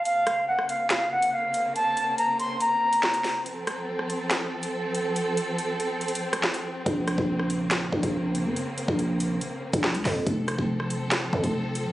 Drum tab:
HH |x-----x-----------x-----x--------x--------x-----|x-----x-----x-----x-----x--------x-----x--o-----|x-----x-----------x-----x--------x--------x-----|x-----x-----x-----x-----x-x-x----x-----x--------|
CP |------------------------x-----------------------|------------------------------------x-----------|------------------------x-----------------------|------------------------------------x-----------|
SD |------r--------r--------o-----------------------|------------------------------------o-----o-----|------r--------r--------o-----------------------|---------------------------------r--o-----------|
BD |------------------------------------------------|------------------------------------------------|------------------------------------------------|------------------------------------------------|

HH |x-----x-----------x-----x--------x--------x-----|x-----x-----x-----x-----x--------x-----x--o-----|x-----x-----------x-----x--------x--------x-----|
CP |------------------------x-----------------------|------------------------------------x-----------|------------------------x-----------------------|
SD |------r--------r--------o-----------------------|------------------------------------o-----o-----|------r--------r--------o-----------------------|
BD |o--------o--------------------o--o--------------|---------o-----------------------o--------o-----|o--------o--------------------o--o--------------|